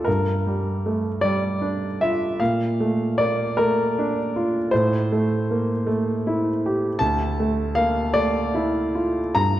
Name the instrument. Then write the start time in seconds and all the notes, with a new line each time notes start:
grand piano
0.05 G2 A#4
0.47 G3
0.86 A3
1.21 G3 D5
1.61 D4
2.01 F4 E5
2.40 A#2 F5
2.80 A3
3.18 A#3 D5
3.57 A3 A#4
3.99 D4
4.36 F4
4.71 A2 C5
5.12 A3
5.51 A#3
5.87 A3
6.27 E4
6.66 G4
6.99 D2 A5
7.39 A3
7.75 A#3 F5
8.14 A3 D5
8.55 E4
8.95 F4
9.35 G2 A#5